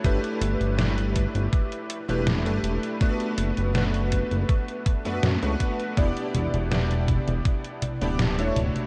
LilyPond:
<<
  \new Staff \with { instrumentName = "Electric grand piano" } { \time 4/4 \key e \dorian \tempo 4 = 81 <a d' e' g' b'>4 <a d' e' g' b'>4.~ <a d' e' g' b'>16 <a d' e' g' b'>8 <a d' e' g' b'>8. | <a b d' fis' b'>4 <a b d' fis' b'>4.~ <a b d' fis' b'>16 <a b d' fis' b'>8 <a b d' fis' b'>8. | <b d' e' g' d''>4 <b d' e' g' d''>4.~ <b d' e' g' d''>16 <b d' e' g' d''>8 <a d' e' fis' cis''>8. | }
  \new Staff \with { instrumentName = "Analog synth bass" } { \clef bass \time 4/4 \key e \dorian g,,16 r16 g,,16 g,,4 g,,16 r8. e,,8 g,,16 e,,16 r16 | r8 fis,,16 fis,,4 fis,,16 r8. fis,16 fis,16 cis,16 r8 | e,,16 r16 e,,16 e,,4 e,,16 r8. d,,8 e,,16 d,,16 r16 | }
  \new DrumStaff \with { instrumentName = "Drums" } \drummode { \time 4/4 <hh bd>16 hh16 hh16 hh16 <hh sn>16 hh16 <hh bd>16 hh16 <hh bd>16 hh16 hh16 hh16 <hh sn>16 hh16 hh16 hh16 | <hh bd>16 hh16 hh16 hh16 <hh sn>16 hh16 <hh bd>16 hh16 <hh bd>16 hh16 <hh bd>16 hh16 <hh sn>16 hh16 <hh bd>16 hh16 | <cgho hh bd>16 hh16 <cgho hh>16 <cgho hh>16 <cgho hh sn>16 hh16 <cgho hh bd>16 <cgho hh>16 <cgho hh bd>16 hh16 <cgho hh>16 <cgho hh>16 <cgho hh sn>16 hh16 <cgho hh>16 <cgho hh>16 | }
>>